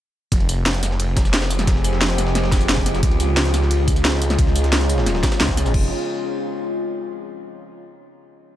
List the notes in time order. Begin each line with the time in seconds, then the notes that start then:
0.32 F1 F3 C4 F4 G4 G#4, kick, closed hi-hat, ride
0.40 ride
0.49 C5, closed hi-hat, ride, tambourine
0.66 snare, closed hi-hat, ride
0.74 snare, closed hi-hat
0.83 snare, closed hi-hat, ride, tambourine
0.91 snare
1.00 closed hi-hat, ride
1.16 D#5, kick, snare, closed hi-hat, ride, tambourine
1.25 snare, tambourine
1.33 snare, closed hi-hat, ride
1.42 snare, ride
1.50 snare, closed hi-hat, tambourine
1.59 snare, ride, tambourine
1.67 F1, kick, snare, closed hi-hat, ride
1.76 snare
1.84 closed hi-hat, ride, tambourine
1.93 snare
2.01 snare, closed hi-hat, ride
2.10 snare, closed hi-hat
2.18 snare, closed hi-hat, ride, tambourine
2.27 snare
2.35 snare, closed hi-hat, ride
2.44 snare
2.52 kick, snare, closed hi-hat, ride, tambourine
2.61 tambourine
2.69 snare, closed hi-hat, open hi-hat
2.78 kick, snare
2.86 snare, closed hi-hat, ride, tambourine
2.95 snare, tambourine
3.03 C#2 C#3 G#3 D#4 F4, kick, closed hi-hat, ride
3.09 G#4, ride
3.20 closed hi-hat, ride, tambourine
3.37 snare, closed hi-hat, ride
3.45 C#5, snare, closed hi-hat
3.54 snare, closed hi-hat, ride, tambourine
3.62 snare
3.71 closed hi-hat, ride
3.88 kick, closed hi-hat, ride, tambourine
3.96 ride, tambourine
4.05 snare, closed hi-hat, ride
4.13 snare
4.22 closed hi-hat, ride, tambourine
4.30 snare, tambourine
4.39 C#2, kick, closed hi-hat, ride
4.47 snare
4.56 closed hi-hat, ride, tambourine
4.64 snare, closed hi-hat
4.72 snare, closed hi-hat, ride
4.81 snare, closed hi-hat
4.89 closed hi-hat, ride, tambourine
4.98 snare
5.06 snare, closed hi-hat, ride
5.15 snare
5.23 kick, snare, closed hi-hat, ride, tambourine
5.32 snare, ride, tambourine
5.40 C#2, snare, closed hi-hat, open hi-hat
5.49 kick, snare
5.57 snare, closed hi-hat, ride, tambourine
5.66 snare, tambourine
5.74 F1 F4, kick, crash
5.79 C5
5.84 D#5
5.89 G#5